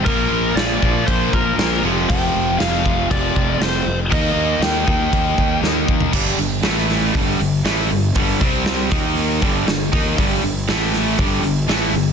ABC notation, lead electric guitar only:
X:1
M:4/4
L:1/16
Q:1/4=119
K:Gm
V:1 name="Lead electric guitar"
B4 d4 c2 B4 z2 | g4 f4 d4 c3 z | e4 g2 g6 z4 | z16 |
z16 | z16 |]